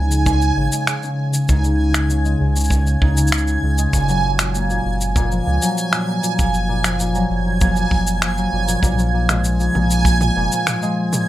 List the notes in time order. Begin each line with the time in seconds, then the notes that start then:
Already playing: C#2 G#3 A#3 C#4 D#4 G#5 G#6
0.11 C#3, shaker
0.26 kick, shaker
0.42 shaker
0.57 G#1 C#3
0.72 G#3, shaker
0.87 C#3, finger snap, shaker
1.03 C#4, shaker
1.34 C#3, shaker
1.49 C#2 D#4, kick, shaker
1.64 C#3, shaker
1.94 finger snap, shaker
2.10 C#3, shaker
2.25 G#3, shaker
2.41 C#2 C#3
2.56 C#4, shaker
2.60 shaker
2.64 shaker
2.68 kick, shaker
2.71 shaker
2.87 C#3, shaker
3.02 C#2 D#4, kick
3.17 C#3, shaker
3.27 shaker
3.32 finger snap, shaker
3.38 shaker
3.48 shaker
3.63 C#2 C#3
3.78 G#3, shaker
3.93 F#1 A#2, kick, shaker
4.09 F#3, shaker
4.39 A#2, finger snap, shaker
4.55 A#3, shaker
4.70 A#2, shaker
4.86 F#1
5.01 shaker
5.16 A#2, kick, shaker
5.32 F3, shaker
5.46 C#2 A#2
5.62 F#3, shaker
5.78 shaker
5.93 A#2, finger snap, shaker
6.08 A#3
6.23 A#2, shaker
6.39 F#1, kick, shaker
6.54 shaker
6.69 A#2
6.84 F3, finger snap, shaker
7.00 A#2, shaker
7.15 F#3, shaker
7.30 F#1
7.46 A#2
7.61 A#3, kick, shaker
7.76 A#2, shaker
7.91 F#1, kick
8.07 shaker
8.22 F3, finger snap, shaker
8.37 F#3, shaker
8.53 F#1 A#2
8.68 A#2, shaker
8.83 A#1 A#2, kick, mid tom, shaker
8.98 F3, shaker
9.14 A#2
9.29 G#3, finger snap, mid tom, shaker
9.44 shaker
9.60 A#2, shaker
9.75 A#1 A#3, mid tom
9.90 A#2, shaker
10.05 kick, shaker
10.21 mid tom, shaker
10.36 F1 A#2
10.52 F3, shaker
10.67 A#2, finger snap, mid tom, shaker
10.82 G#3, shaker
11.13 A#2, mid tom, shaker